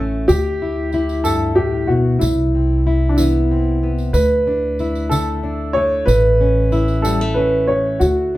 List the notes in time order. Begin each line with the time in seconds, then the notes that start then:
Already playing: A1 A3 C#4 E4
0.28 D2 G4, tambourine
0.62 E4
0.92 E4, tambourine
1.09 tambourine
1.24 G2 A4, tambourine
1.55 A2 G4
1.87 B2 F#4
2.19 C2 C3 E4, tambourine
2.55 C4
2.87 E4
3.09 D4
3.16 E3 B3 E4, tambourine
3.51 C4
3.83 B3
3.98 tambourine
4.13 D2 B4, tambourine
4.47 D4
4.79 E4, tambourine
4.95 tambourine
5.09 D3 A3 A4, tambourine
5.43 D4
5.73 A3 C#5
6.06 A1 A2 B4, tambourine
6.41 C#4
6.72 E4, tambourine
6.88 tambourine
7.02 E3 G3 A4, tambourine
7.21 A3
7.34 C#4 B4
7.67 A3 C#5
8.00 D2 F#4, tambourine